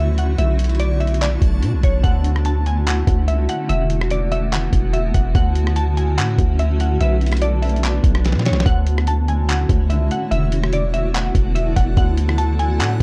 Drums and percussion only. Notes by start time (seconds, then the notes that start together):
0.18 closed hi-hat
0.38 closed hi-hat
0.59 closed hi-hat
0.64 closed hi-hat
0.69 closed hi-hat
0.75 closed hi-hat
0.80 closed hi-hat
1.01 closed hi-hat
1.07 closed hi-hat
1.14 closed hi-hat
1.21 clap, closed hi-hat
1.42 kick, closed hi-hat
1.63 closed hi-hat
1.83 kick, closed hi-hat
2.04 kick, closed hi-hat
2.24 closed hi-hat
2.36 cross-stick
2.45 closed hi-hat
2.66 closed hi-hat
2.87 clap, closed hi-hat
3.07 kick, closed hi-hat
3.28 closed hi-hat
3.49 closed hi-hat
3.69 closed hi-hat
3.90 closed hi-hat
4.01 cross-stick
4.10 closed hi-hat
4.32 closed hi-hat
4.52 clap, closed hi-hat
4.73 kick, closed hi-hat
4.94 closed hi-hat
5.14 kick, closed hi-hat
5.35 kick, closed hi-hat
5.55 closed hi-hat
5.67 cross-stick
5.76 closed hi-hat
5.97 closed hi-hat
6.18 clap, closed hi-hat
6.38 kick, closed hi-hat
6.59 closed hi-hat
6.80 closed hi-hat
7.01 closed hi-hat
7.21 closed hi-hat
7.26 closed hi-hat
7.32 cross-stick, closed hi-hat
7.37 closed hi-hat
7.42 closed hi-hat
7.63 closed hi-hat, open hi-hat
7.69 closed hi-hat
7.76 closed hi-hat
7.83 clap, closed hi-hat
8.04 kick, closed hi-hat
8.15 cross-stick
8.25 snare, closed hi-hat
8.32 snare
8.39 snare
8.45 snare, closed hi-hat
8.53 snare
8.60 snare
8.66 kick, closed hi-hat
8.87 closed hi-hat
8.98 cross-stick
9.07 closed hi-hat
9.28 closed hi-hat
9.49 clap, closed hi-hat
9.69 kick, closed hi-hat
9.90 closed hi-hat
10.11 closed hi-hat
10.32 closed hi-hat
10.52 closed hi-hat
10.64 cross-stick
10.73 closed hi-hat
10.94 closed hi-hat
11.14 clap, closed hi-hat
11.35 kick, closed hi-hat
11.56 closed hi-hat
11.76 kick, closed hi-hat
11.97 kick, closed hi-hat
12.17 closed hi-hat
12.29 cross-stick
12.38 closed hi-hat
12.59 closed hi-hat
12.80 clap, closed hi-hat